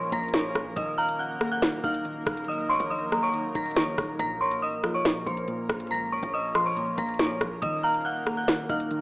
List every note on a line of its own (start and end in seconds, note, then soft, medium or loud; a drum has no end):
0.00 0.12 A#1 loud
0.00 0.34 A#2 medium
0.00 0.73 F3 medium
0.00 0.77 F3 loud
0.00 0.12 A#3 medium
0.00 0.73 A#3 medium
0.00 0.73 C#4 medium
0.00 7.58 A#4 loud
0.00 0.11 C#5 medium
0.00 0.73 C6 medium
0.00 0.10 C#6 medium
0.12 0.53 A#1 loud
0.12 0.76 A#3 medium
0.12 0.31 A#5 medium
0.12 0.31 A#6 medium
0.12 kick medium
0.12 closed hi-hat medium
0.23 closed hi-hat soft
0.28 closed hi-hat medium
0.34 0.77 A#2 loud
0.34 0.53 C#5 medium
0.34 0.52 C#6 medium
0.34 snare loud
0.34 closed hi-hat medium
0.39 closed hi-hat medium
0.55 0.76 A#1 loud
0.55 kick loud
0.55 cross-stick loud
0.55 closed hi-hat medium
0.76 1.80 D#1 loud
0.76 1.61 D#3 medium
0.76 4.16 F#3 medium
0.76 4.16 A#3 medium
0.76 4.16 D#4 medium
0.76 0.95 D#5 medium
0.76 0.95 D#6 medium
0.76 kick loud
0.76 closed hi-hat medium
0.98 1.17 F5 medium
0.98 1.18 A#5 medium
0.98 1.16 F6 medium
1.09 closed hi-hat medium
1.19 1.50 F#5 medium
1.19 1.49 F#6 medium
1.41 2.48 A#3 loud
1.41 cross-stick loud
1.52 1.82 F#5 medium
1.52 1.82 F#6 medium
1.62 2.04 D#3 medium
1.62 snare loud
1.62 closed hi-hat medium
1.84 2.25 D#1 loud
1.84 2.91 D#4 medium
1.84 2.45 F5 medium
1.84 2.44 F6 medium
1.84 kick loud
1.94 closed hi-hat medium
2.05 2.47 D#3 medium
2.05 closed hi-hat medium
2.27 2.71 D#1 loud
2.27 kick loud
2.27 cross-stick loud
2.37 closed hi-hat medium
2.44 3.33 D#3 medium
2.44 2.67 D#6 medium
2.44 closed hi-hat medium
2.49 2.67 D#5 medium
2.49 closed hi-hat medium
2.69 2.80 F1 loud
2.69 2.88 C#5 medium
2.69 3.10 C6 medium
2.69 2.88 C#6 medium
2.80 3.21 A#1 loud
2.80 kick loud
2.80 closed hi-hat medium
2.90 3.21 D#5 medium
2.90 3.21 D#6 medium
3.12 4.19 A#3 medium
3.12 3.73 A#5 medium
3.12 cross-stick loud
3.23 3.54 C#5 medium
3.23 3.53 C#6 medium
3.34 3.75 D#3 medium
3.34 closed hi-hat medium
3.55 3.78 D#1 loud
3.55 4.20 D#4 medium
3.55 3.74 A#5 medium
3.55 3.74 A#6 medium
3.55 kick loud
3.55 closed hi-hat medium
3.66 closed hi-hat soft
3.71 closed hi-hat medium
3.76 3.97 A#1 loud
3.76 4.19 D#3 medium
3.76 3.95 C#5 medium
3.76 3.95 C#6 medium
3.76 snare loud
3.76 closed hi-hat medium
3.82 closed hi-hat medium
3.98 4.19 D#1 loud
3.98 kick loud
3.98 cross-stick loud
3.98 open hi-hat medium
4.19 4.64 A#1 loud
4.19 5.04 A#2 medium
4.19 7.59 F3 medium
4.19 9.01 A#3 medium
4.19 7.59 C#4 medium
4.19 4.38 A#5 loud
4.19 4.38 A#6 medium
4.19 kick loud
4.19 closed hi-hat medium
4.41 4.60 C#5 medium
4.41 4.61 C6 medium
4.41 4.59 C#6 medium
4.51 closed hi-hat medium
4.62 4.75 A1 loud
4.62 4.93 D#5 medium
4.62 4.93 D#6 medium
4.73 4.83 A#1 loud
4.84 5.91 F3 medium
4.84 cross-stick loud
4.94 5.25 C#5 medium
4.94 5.25 C#6 medium
5.05 5.46 A#2 medium
5.05 snare loud
5.05 closed hi-hat medium
5.26 5.47 A#1 loud
5.26 6.34 A#3 medium
5.26 5.87 C5 medium
5.26 5.87 C6 medium
5.26 kick medium
5.37 closed hi-hat medium
5.48 5.90 A#2 loud
5.48 closed hi-hat medium
5.69 5.92 A#1 loud
5.69 kick loud
5.69 cross-stick loud
5.80 closed hi-hat medium
5.87 6.21 C#2 loud
5.87 6.75 A#2 medium
5.87 6.09 A#5 loud
5.87 closed hi-hat medium
5.92 6.10 A#6 medium
5.92 closed hi-hat medium
6.12 6.31 C#5 medium
6.12 6.53 C#6 medium
6.12 6.31 C#6 medium
6.23 6.78 A#1 loud
6.23 kick medium
6.23 closed hi-hat medium
6.34 6.64 D#5 medium
6.34 6.64 D#6 medium
6.55 7.62 F3 loud
6.55 7.58 C6 medium
6.55 cross-stick loud
6.66 6.96 C#5 medium
6.66 6.96 C#6 medium
6.76 6.89 C#2 loud
6.76 7.18 A#2 medium
6.76 closed hi-hat medium
6.87 6.98 A#1 loud
6.98 7.39 A#1 loud
6.98 7.62 A#3 medium
6.98 7.16 A#5 medium
6.98 7.17 A#6 medium
6.98 kick loud
6.98 closed hi-hat medium
7.09 closed hi-hat soft
7.14 closed hi-hat medium
7.19 7.62 A#2 loud
7.19 7.38 C#5 medium
7.19 7.38 C#6 medium
7.19 snare loud
7.19 closed hi-hat medium
7.25 closed hi-hat medium
7.41 7.61 A#1 loud
7.41 kick loud
7.41 cross-stick loud
7.41 closed hi-hat medium
7.62 8.65 D#1 loud
7.62 8.47 D#3 medium
7.62 9.01 F#3 medium
7.62 9.01 D#4 medium
7.62 9.01 A#4 loud
7.62 7.81 D#5 medium
7.62 7.80 D#6 medium
7.62 kick loud
7.62 closed hi-hat medium
7.83 8.02 F5 medium
7.83 8.04 A#5 medium
7.83 8.02 F6 medium
7.94 closed hi-hat medium
8.05 8.36 F#5 medium
8.05 8.35 F#6 medium
8.26 9.01 A#3 loud
8.26 cross-stick loud
8.37 8.68 F#5 medium
8.37 8.68 F#6 medium
8.48 8.90 D#3 medium
8.48 snare loud
8.48 closed hi-hat medium
8.69 9.01 D#1 loud
8.69 9.01 D#4 medium
8.69 9.01 F5 medium
8.69 9.01 F6 medium
8.69 kick medium
8.80 closed hi-hat medium
8.91 9.01 D#3 medium
8.91 closed hi-hat medium